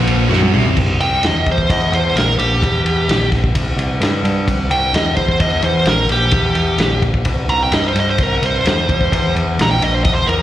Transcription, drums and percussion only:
0.07 ride medium
0.33 snare medium
0.42 high tom medium
0.54 mid tom loud
0.65 floor tom medium
0.77 kick loud
0.77 crash medium
1.01 ride medium
1.23 snare loud
1.23 ride medium
1.46 kick medium
1.46 ride medium
1.58 kick medium
1.70 kick loud
1.70 ride medium
1.93 ride medium
2.17 snare loud
2.17 ride medium
2.39 ride medium
2.63 kick medium
2.63 ride medium
2.86 ride medium
3.09 snare medium
3.09 ride medium
3.32 kick medium
3.32 snare soft
3.32 ride medium
3.44 kick medium
3.55 kick loud
3.55 ride loud
3.79 ride medium
4.02 snare loud
4.02 ride medium
4.25 ride medium
4.48 kick medium
4.48 ride medium
4.71 ride medium
4.94 snare loud
4.94 ride medium
5.16 kick medium
5.16 ride medium
5.29 kick medium
5.40 kick medium
5.40 ride loud
5.62 ride medium
5.86 snare loud
5.86 ride medium
6.09 ride medium
6.31 kick loud
6.31 ride medium
6.55 ride medium
6.78 snare loud
6.78 ride medium
7.02 kick medium
7.02 ride medium
7.14 kick medium
7.25 kick loud
7.25 ride medium
7.49 ride medium
7.72 snare loud
7.72 ride medium
7.96 ride medium
8.18 kick loud
8.18 ride medium
8.43 ride medium
8.66 snare loud
8.66 ride medium
8.89 kick medium
8.89 ride medium
9.01 kick medium
9.12 kick medium
9.12 ride loud
9.36 ride medium
9.59 snare loud
9.59 ride medium
9.82 ride medium
10.05 kick loud
10.05 ride medium
10.29 ride medium

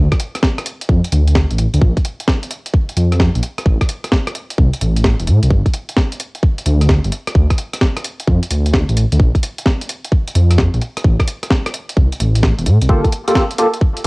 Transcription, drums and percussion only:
0.12 kick medium
0.12 cross-stick medium
0.12 closed hi-hat soft
0.20 closed hi-hat loud
0.35 cross-stick soft
0.35 closed hi-hat medium
0.43 kick loud
0.43 snare loud
0.58 cross-stick medium
0.58 closed hi-hat soft
0.66 closed hi-hat loud
0.81 closed hi-hat medium
0.89 kick loud
1.04 closed hi-hat soft
1.12 closed hi-hat loud
1.27 closed hi-hat medium
1.35 kick loud
1.35 snare loud
1.50 closed hi-hat soft
1.58 closed hi-hat loud
1.73 closed hi-hat medium
1.81 kick loud
1.97 kick medium
1.97 closed hi-hat soft
2.04 closed hi-hat loud
2.20 closed hi-hat medium
2.27 kick loud
2.27 snare loud
2.43 closed hi-hat soft
2.51 closed hi-hat loud
2.66 closed hi-hat medium
2.74 kick loud
2.89 closed hi-hat soft
2.97 closed hi-hat loud
3.12 cross-stick soft
3.12 closed hi-hat medium
3.20 kick loud
3.20 snare loud
3.35 closed hi-hat soft
3.43 closed hi-hat loud
3.58 cross-stick medium
3.58 closed hi-hat medium
3.66 kick loud
3.81 kick medium
3.81 cross-stick medium
3.81 closed hi-hat soft
3.89 closed hi-hat loud
4.04 cross-stick soft
4.04 closed hi-hat medium
4.12 kick loud
4.12 snare loud
4.27 cross-stick medium
4.27 closed hi-hat soft
4.35 closed hi-hat loud
4.50 closed hi-hat medium
4.58 kick loud
4.74 closed hi-hat medium
4.81 closed hi-hat loud
4.97 closed hi-hat medium
5.04 kick loud
5.04 snare loud
5.20 closed hi-hat soft
5.27 closed hi-hat medium
5.43 closed hi-hat medium
5.51 kick loud
5.66 kick medium
5.66 closed hi-hat soft
5.74 closed hi-hat loud
5.89 closed hi-hat medium
5.97 kick loud
5.97 snare loud
6.12 closed hi-hat medium
6.20 closed hi-hat loud
6.35 closed hi-hat medium
6.43 kick loud
6.58 closed hi-hat soft
6.66 closed hi-hat loud
6.81 cross-stick soft
6.81 closed hi-hat medium
6.89 kick loud
6.89 snare loud
7.04 closed hi-hat soft
7.12 closed hi-hat loud
7.27 cross-stick medium
7.27 closed hi-hat medium
7.35 kick loud
7.50 kick medium
7.50 cross-stick soft
7.50 closed hi-hat soft
7.58 closed hi-hat loud
7.73 cross-stick soft
7.73 closed hi-hat medium
7.81 kick loud
7.81 snare loud
7.97 cross-stick medium
7.97 closed hi-hat medium
8.04 closed hi-hat loud
8.20 closed hi-hat medium
8.27 kick loud
8.43 closed hi-hat medium
8.51 closed hi-hat loud
8.66 closed hi-hat medium
8.74 kick loud
8.74 snare loud
8.89 closed hi-hat soft
8.97 closed hi-hat loud
9.12 closed hi-hat medium
9.20 kick loud
9.35 kick medium
9.35 closed hi-hat soft
9.43 closed hi-hat loud
9.58 closed hi-hat medium
9.66 kick loud
9.66 snare loud
9.82 closed hi-hat medium
9.89 closed hi-hat loud
10.05 closed hi-hat medium
10.12 kick loud
10.28 closed hi-hat medium
10.35 closed hi-hat loud
10.51 cross-stick soft
10.51 closed hi-hat medium
10.58 kick loud
10.58 snare loud
10.74 closed hi-hat soft
10.81 closed hi-hat loud
10.97 cross-stick soft
10.97 closed hi-hat medium
11.04 kick loud
11.20 kick medium
11.20 cross-stick medium
11.20 closed hi-hat soft
11.28 closed hi-hat loud
11.43 cross-stick soft
11.43 closed hi-hat medium
11.51 kick loud
11.51 snare loud
11.66 cross-stick medium
11.66 closed hi-hat medium
11.74 closed hi-hat loud
11.89 closed hi-hat medium
11.97 kick loud
12.12 closed hi-hat medium
12.20 closed hi-hat loud
12.35 closed hi-hat medium
12.43 kick loud
12.43 snare loud
12.58 closed hi-hat soft
12.66 closed hi-hat loud
12.81 closed hi-hat medium
12.89 kick loud
13.04 kick medium
13.04 closed hi-hat soft
13.12 closed hi-hat loud
13.27 closed hi-hat medium
13.35 kick loud
13.35 snare loud
13.51 closed hi-hat medium
13.58 closed hi-hat loud
13.74 closed hi-hat medium
13.81 kick loud
13.97 closed hi-hat medium

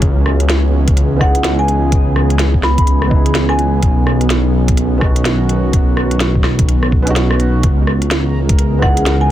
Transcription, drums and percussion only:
0.02 kick loud
0.02 closed hi-hat medium
0.26 cross-stick medium
0.40 closed hi-hat soft
0.49 snare loud
0.49 closed hi-hat medium
0.88 kick loud
0.88 closed hi-hat medium
0.97 closed hi-hat medium
1.21 kick loud
1.21 cross-stick medium
1.35 closed hi-hat medium
1.44 snare loud
1.44 closed hi-hat medium
1.68 closed hi-hat soft
1.92 kick loud
1.92 closed hi-hat medium
2.16 cross-stick medium
2.30 closed hi-hat soft
2.39 snare medium
2.39 closed hi-hat medium
2.54 kick medium
2.63 cross-stick medium
2.63 snare medium
2.78 kick loud
2.78 closed hi-hat medium
2.87 closed hi-hat medium
3.02 cross-stick medium
3.11 kick loud
3.26 closed hi-hat medium
3.35 snare loud
3.35 closed hi-hat medium
3.49 cross-stick medium
3.59 closed hi-hat soft
3.82 kick loud
3.82 closed hi-hat medium
4.07 cross-stick medium
4.21 closed hi-hat soft
4.30 snare loud
4.30 closed hi-hat medium
4.68 kick loud
4.68 closed hi-hat medium
4.77 closed hi-hat medium
5.01 kick loud
5.01 cross-stick medium
5.16 closed hi-hat medium
5.25 snare loud
5.25 closed hi-hat medium
5.49 closed hi-hat soft
5.73 kick loud
5.73 closed hi-hat medium
5.97 cross-stick medium
6.11 closed hi-hat soft
6.20 snare loud
6.20 closed hi-hat medium
6.35 kick medium
6.44 cross-stick medium
6.44 snare medium
6.59 kick loud
6.59 closed hi-hat medium
6.69 closed hi-hat medium
6.83 cross-stick medium
6.92 kick loud
7.07 closed hi-hat medium
7.16 snare loud
7.16 closed hi-hat medium
7.31 cross-stick medium
7.40 closed hi-hat soft
7.63 kick loud
7.63 closed hi-hat medium
7.87 cross-stick medium
8.02 closed hi-hat soft
8.11 snare loud
8.11 closed hi-hat medium
8.49 kick loud
8.49 closed hi-hat medium
8.59 closed hi-hat medium
8.82 kick loud
8.82 cross-stick medium
8.97 closed hi-hat medium
9.06 snare loud
9.06 closed hi-hat medium

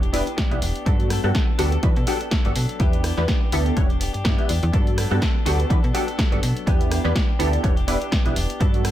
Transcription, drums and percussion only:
0.03 closed hi-hat soft
0.14 open hi-hat loud
0.27 closed hi-hat soft
0.38 kick loud
0.38 snare loud
0.38 closed hi-hat medium
0.51 closed hi-hat soft
0.62 open hi-hat loud
0.76 closed hi-hat medium
0.86 kick loud
0.86 closed hi-hat medium
1.00 closed hi-hat soft
1.10 cross-stick medium
1.10 open hi-hat loud
1.35 kick loud
1.35 snare loud
1.35 closed hi-hat medium
1.59 open hi-hat loud
1.72 closed hi-hat soft
1.83 kick loud
1.83 closed hi-hat medium
1.96 closed hi-hat soft
2.07 open hi-hat loud
2.21 closed hi-hat soft
2.31 kick loud
2.31 snare loud
2.31 closed hi-hat medium
2.45 closed hi-hat soft
2.56 open hi-hat loud
2.69 closed hi-hat soft
2.80 kick loud
2.80 closed hi-hat medium
2.93 closed hi-hat soft
3.04 cross-stick medium
3.04 open hi-hat loud
3.17 snare soft
3.28 kick loud
3.28 snare loud
3.28 closed hi-hat medium
3.52 open hi-hat loud
3.66 closed hi-hat soft
3.77 kick loud
3.77 closed hi-hat medium
3.90 closed hi-hat soft
4.01 open hi-hat loud
4.14 closed hi-hat soft
4.25 kick loud
4.25 snare loud
4.25 closed hi-hat medium
4.39 closed hi-hat soft
4.49 open hi-hat loud
4.63 closed hi-hat soft
4.73 kick loud
4.73 closed hi-hat medium
4.87 closed hi-hat soft
4.98 cross-stick medium
4.98 open hi-hat loud
5.22 kick loud
5.22 snare loud
5.22 closed hi-hat medium
5.46 open hi-hat loud
5.60 closed hi-hat soft
5.70 kick loud
5.70 closed hi-hat medium
5.84 closed hi-hat soft
5.95 open hi-hat loud
6.08 closed hi-hat soft
6.19 kick loud
6.19 snare loud
6.19 closed hi-hat medium
6.32 closed hi-hat soft
6.43 open hi-hat loud
6.57 closed hi-hat soft
6.67 kick loud
6.67 closed hi-hat medium
6.81 closed hi-hat medium
6.91 cross-stick medium
6.91 open hi-hat loud
7.05 snare soft
7.16 kick loud
7.16 snare loud
7.16 closed hi-hat medium
7.40 open hi-hat loud
7.53 closed hi-hat soft
7.64 kick loud
7.64 closed hi-hat medium
7.77 closed hi-hat soft
7.88 open hi-hat loud
8.02 closed hi-hat soft
8.12 kick loud
8.12 snare loud
8.12 closed hi-hat medium
8.26 closed hi-hat soft
8.36 open hi-hat loud
8.50 closed hi-hat medium
8.61 kick loud
8.61 closed hi-hat medium
8.74 closed hi-hat medium
8.85 cross-stick medium
8.85 open hi-hat loud

